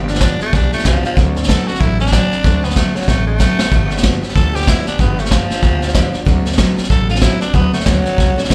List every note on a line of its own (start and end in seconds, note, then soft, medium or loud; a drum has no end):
0.00 0.25 G1 loud
0.08 0.21 F3 soft
0.08 0.22 B3 soft
0.08 0.21 D4 medium
0.08 0.22 D4 soft
0.08 0.21 G4 medium
0.08 snare soft
0.14 snare soft
0.21 0.40 G2 medium
0.21 0.41 D3 medium
0.21 0.41 F3 medium
0.21 0.41 B3 medium
0.21 0.40 D4 medium
0.21 0.39 G4 medium
0.21 kick medium
0.21 snare loud
0.21 hi-hat pedal medium
0.40 0.51 F3 soft
0.40 0.56 A3 loud
0.40 0.52 B3 soft
0.40 0.54 D4 soft
0.40 0.53 G4 soft
0.40 muted upright bass stroke medium
0.40 snare soft
0.52 0.69 B1 medium
0.52 0.72 F3 medium
0.52 0.72 B3 medium
0.52 0.72 D4 medium
0.52 0.71 D4 medium
0.52 0.70 G4 medium
0.52 kick loud
0.52 snare soft
0.71 0.83 F3 medium
0.71 0.85 A3 medium
0.71 0.84 B3 medium
0.71 0.85 D4 medium
0.71 0.84 G4 medium
0.71 muted upright bass stroke medium
0.71 snare soft
0.79 snare soft
0.84 1.01 C2 medium
0.84 1.03 G2 medium
0.84 1.04 D3 medium
0.84 1.04 F3 medium
0.84 1.04 F3 loud
0.84 1.04 B3 medium
0.84 1.03 D4 medium
0.84 1.02 G4 medium
0.84 kick medium
0.84 snare loud
0.84 hi-hat pedal medium
1.03 1.17 F3 loud
1.03 1.16 F3 soft
1.03 1.17 B3 medium
1.03 1.16 D4 medium
1.03 1.16 G4 soft
1.03 snare soft
1.16 1.52 D2 medium
1.16 1.35 D3 medium
1.16 1.36 F#3 medium
1.16 1.36 C4 medium
1.16 1.36 D4 medium
1.16 1.34 A4 medium
1.16 kick loud
1.16 snare soft
1.35 1.48 C4 soft
1.35 1.48 D4 medium
1.35 1.48 A4 medium
1.35 snare soft
1.43 snare soft
1.48 1.67 D3 medium
1.48 1.68 F#3 medium
1.48 1.68 C4 medium
1.48 1.67 D4 medium
1.48 1.69 A4 medium
1.48 1.65 A4 medium
1.48 kick medium
1.48 snare loud
1.48 hi-hat pedal medium
1.66 1.80 C4 soft
1.66 1.81 D4 soft
1.66 1.82 F#4 medium
1.66 1.80 A4 soft
1.66 muted upright bass stroke medium
1.66 snare soft
1.75 snare soft
1.79 2.16 A1 medium
1.79 1.99 F#3 medium
1.79 2.00 C4 medium
1.79 1.99 D4 medium
1.79 1.99 E4 medium
1.79 1.98 A4 medium
1.79 kick loud
1.79 snare soft
1.99 2.12 C4 soft
1.99 2.66 D4 loud
1.99 2.12 D4 medium
1.99 2.12 A4 medium
1.99 snare soft
2.06 snare soft
2.12 2.31 D3 medium
2.12 2.31 F#3 medium
2.12 2.32 C4 medium
2.12 2.31 D4 medium
2.12 2.30 A4 medium
2.12 kick medium
2.12 snare loud
2.12 hi-hat pedal medium
2.31 2.43 C4 medium
2.31 2.44 D4 soft
2.31 2.44 A4 medium
2.31 muted upright bass stroke medium
2.31 snare soft
2.43 2.80 D2 loud
2.43 2.63 D3 medium
2.43 2.63 F#3 loud
2.43 2.63 C4 medium
2.43 2.63 D4 medium
2.43 2.61 A4 loud
2.43 kick loud
2.43 snare soft
2.63 2.76 B3 medium
2.63 2.75 C4 soft
2.63 2.76 D4 soft
2.63 2.76 A4 medium
2.63 snare soft
2.70 snare soft
2.75 2.95 D3 medium
2.75 2.95 F#3 medium
2.75 2.98 A3 medium
2.75 2.95 C4 medium
2.75 2.95 D4 medium
2.75 2.93 A4 medium
2.75 kick medium
2.75 snare loud
2.75 hi-hat pedal medium
2.94 3.10 F#3 medium
2.94 3.07 C4 soft
2.94 3.08 D4 medium
2.94 3.07 A4 soft
2.94 muted upright bass stroke medium
2.94 snare soft
3.02 snare soft
3.07 3.44 A1 medium
3.07 3.27 F#3 medium
3.07 3.26 A3 medium
3.07 3.27 C4 medium
3.07 3.26 D4 medium
3.07 3.24 A4 medium
3.07 kick loud
3.07 snare medium
3.25 4.20 A3 loud
3.25 3.38 C4 soft
3.25 3.39 D4 medium
3.25 3.39 A4 medium
3.38 3.58 D3 medium
3.38 3.58 F#3 medium
3.38 3.59 C4 medium
3.38 3.58 D4 loud
3.38 3.56 A4 loud
3.38 kick medium
3.38 snare medium
3.38 hi-hat pedal medium
3.58 3.72 C4 soft
3.58 3.71 D4 medium
3.58 3.71 A4 medium
3.58 muted upright bass stroke medium
3.58 snare medium
3.71 4.07 G1 loud
3.71 3.90 G2 medium
3.71 3.91 D3 loud
3.71 3.91 F3 loud
3.71 3.91 B3 loud
3.71 3.90 D4 loud
3.71 3.89 G4 loud
3.71 kick loud
3.71 snare soft
3.90 4.02 F3 medium
3.90 4.02 B3 medium
3.90 4.03 D4 medium
3.90 4.03 G4 medium
3.90 snare soft
3.97 snare soft
4.02 4.22 G2 medium
4.02 4.22 D3 medium
4.02 4.23 F3 medium
4.02 4.22 B3 loud
4.02 4.21 D4 medium
4.02 4.20 G4 medium
4.02 kick loud
4.02 snare loud
4.02 hi-hat pedal medium
4.21 4.33 F3 medium
4.21 4.34 B3 medium
4.21 4.35 D4 medium
4.21 4.35 G4 medium
4.21 muted upright bass stroke medium
4.21 snare soft
4.29 snare soft
4.34 4.71 D2 medium
4.34 4.54 F3 medium
4.34 4.54 B3 medium
4.34 4.53 D4 medium
4.34 4.52 G4 medium
4.34 4.57 A4 medium
4.34 kick loud
4.34 snare soft
4.53 4.66 F3 soft
4.53 4.66 B3 soft
4.53 4.67 D4 medium
4.53 4.67 G4 medium
4.53 4.70 G4 medium
4.53 snare soft
4.61 snare soft
4.66 4.86 G2 medium
4.66 4.86 D3 medium
4.66 4.86 F3 medium
4.66 4.86 B3 loud
4.66 4.85 D4 medium
4.66 4.87 E4 medium
4.66 4.84 G4 medium
4.66 kick loud
4.66 snare loud
4.66 hi-hat pedal loud
4.85 4.98 F3 soft
4.85 4.99 B3 soft
4.85 4.99 D4 medium
4.85 5.02 D4 medium
4.85 4.99 G4 medium
4.85 muted upright bass stroke medium
4.85 snare soft
4.98 5.35 G1 loud
4.98 5.18 G2 medium
4.98 5.18 D3 medium
4.98 5.18 F3 medium
4.98 5.19 B3 medium
4.98 5.21 B3 medium
4.98 5.18 D4 medium
4.98 5.16 G4 medium
4.98 kick loud
4.98 snare soft
5.17 5.31 F3 soft
5.17 5.31 A3 medium
5.17 5.31 B3 soft
5.17 5.31 D4 soft
5.17 5.31 G4 medium
5.17 snare soft
5.25 snare soft
5.31 5.50 G2 medium
5.31 5.50 D3 medium
5.31 6.24 F3 loud
5.31 5.51 F3 medium
5.31 5.50 B3 medium
5.31 5.49 D4 medium
5.31 5.48 G4 medium
5.31 kick medium
5.31 snare loud
5.31 hi-hat pedal medium
5.49 5.61 F3 soft
5.49 5.62 B3 soft
5.49 5.63 D4 medium
5.49 5.62 G4 medium
5.49 muted upright bass stroke medium
5.49 snare soft
5.62 5.99 D2 medium
5.62 5.82 F3 medium
5.62 5.82 B3 medium
5.62 5.81 D4 medium
5.62 5.80 G4 medium
5.62 kick loud
5.62 snare soft
5.81 5.93 F3 soft
5.81 5.94 B3 medium
5.81 5.94 D4 medium
5.81 5.94 G4 medium
5.81 snare soft
5.88 snare soft
5.93 6.13 G2 medium
5.93 6.14 D3 medium
5.93 6.14 F3 medium
5.93 6.13 B3 medium
5.93 6.12 D4 loud
5.93 6.11 G4 loud
5.93 kick medium
5.93 snare loud
5.93 hi-hat pedal medium
6.12 6.25 F3 soft
6.12 6.26 B3 soft
6.12 6.26 D4 medium
6.12 6.26 G4 medium
6.12 muted upright bass stroke medium
6.12 snare soft
6.25 6.63 D2 medium
6.25 6.45 D3 loud
6.25 6.45 F#3 medium
6.25 6.46 C4 medium
6.25 6.45 D4 loud
6.25 6.44 A4 loud
6.25 kick loud
6.25 snare soft
6.45 6.57 C4 medium
6.45 6.58 D4 medium
6.45 6.58 A4 medium
6.45 snare soft
6.52 snare soft
6.57 6.77 D3 medium
6.57 6.77 F#3 medium
6.57 6.78 C4 medium
6.57 6.77 D4 medium
6.57 6.75 A4 medium
6.57 kick medium
6.57 snare loud
6.57 hi-hat pedal medium
6.76 6.89 C4 soft
6.76 6.90 D4 medium
6.76 6.90 A4 medium
6.76 muted upright bass stroke medium
6.76 snare soft
6.84 snare soft
6.89 7.26 A1 medium
6.89 7.09 F#3 medium
6.89 7.10 C4 medium
6.89 7.09 D4 medium
6.89 7.09 A4 medium
6.89 7.08 A4 medium
6.89 kick loud
6.89 snare soft
7.09 7.22 C4 soft
7.09 7.22 D4 medium
7.09 7.24 F4 medium
7.09 7.22 A4 medium
7.09 snare soft
7.15 snare soft
7.21 7.41 D3 medium
7.21 7.41 F#3 medium
7.21 7.42 C4 medium
7.21 7.41 D4 medium
7.21 7.41 E4 medium
7.21 7.39 A4 medium
7.21 kick medium
7.21 snare loud
7.21 hi-hat pedal medium
7.40 7.53 C4 medium
7.40 7.56 D4 medium
7.40 7.54 D4 medium
7.40 7.54 A4 medium
7.40 muted upright bass stroke medium
7.40 snare soft
7.53 7.68 D2 loud
7.53 7.73 D3 medium
7.53 7.73 F#3 medium
7.53 7.73 B3 loud
7.53 7.74 C4 medium
7.53 7.72 D4 medium
7.53 7.71 A4 medium
7.53 kick loud
7.53 snare soft
7.72 7.88 A3 medium
7.72 7.85 C4 soft
7.72 7.85 D4 medium
7.72 7.86 A4 medium
7.72 muted upright bass stroke medium
7.72 snare soft
7.80 snare soft
7.84 8.03 D2 medium
7.84 8.05 D3 medium
7.84 8.05 F#3 medium
7.84 8.55 F#3 loud
7.84 8.05 C4 medium
7.84 8.04 D4 medium
7.84 8.02 A4 medium
7.84 kick medium
7.84 snare loud
7.84 hi-hat pedal medium
8.04 8.17 C4 soft
8.04 8.18 D4 soft
8.04 8.17 A4 medium
8.04 muted upright bass stroke medium
8.04 snare soft
8.17 8.35 C2 medium
8.17 8.37 F#3 medium
8.17 8.37 C4 medium
8.17 8.37 D4 medium
8.17 8.35 A4 medium
8.17 kick loud
8.17 snare soft
8.36 8.49 C4 medium
8.36 8.50 D4 medium
8.36 8.50 A4 medium
8.36 muted upright bass stroke medium
8.36 snare soft
8.44 snare soft
8.49 8.55 B1 medium
8.49 8.55 D3 medium
8.49 8.55 F#3 loud
8.49 8.55 C4 medium
8.49 8.55 D4 loud
8.49 8.55 A4 loud
8.49 kick medium
8.49 snare loud
8.49 hi-hat pedal loud